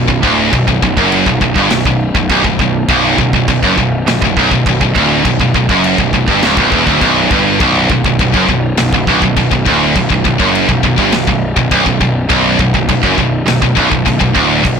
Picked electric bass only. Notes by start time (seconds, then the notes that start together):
0.08 B0
0.23 D1
0.54 B0
0.69 B0
0.83 B0
0.98 F#1
1.27 B0
1.41 B0
1.56 G1
1.72 B0
1.85 B0
2.15 B0
2.30 B0
2.45 B0
2.59 B0
2.88 B0
3.19 B0
3.34 B0
3.48 B0
3.63 F#1
3.78 B0
4.09 B0
4.22 B0
4.37 B0
4.52 B0
4.66 B0
4.81 B0
4.96 D1
5.25 B0
5.40 B0
5.55 B0
5.70 F#1
5.99 B0
6.13 B0
6.28 G1
6.44 C#1
6.58 B0
6.72 E1
6.87 D1
7.02 B0
7.32 G1
7.61 B0
7.90 B0
8.05 B0
8.19 B0
8.35 F#1
8.49 B0
8.81 B0
8.93 B0
9.08 B0
9.22 B0
9.37 B0
9.51 B0
9.67 D1
9.96 B0
10.10 B0
10.25 B0
10.40 F#1
10.70 B0
10.83 B0
10.98 G1
11.15 B0
11.28 B0
11.57 B0
11.72 B0
11.86 B0
12.01 B0
12.30 B0
12.59 B0
12.74 B0
12.89 B0
13.04 F#1
13.18 B0
13.48 B0
13.62 B0
13.77 B0
13.92 B0
14.06 B0
14.21 B0
14.36 D1
14.65 B0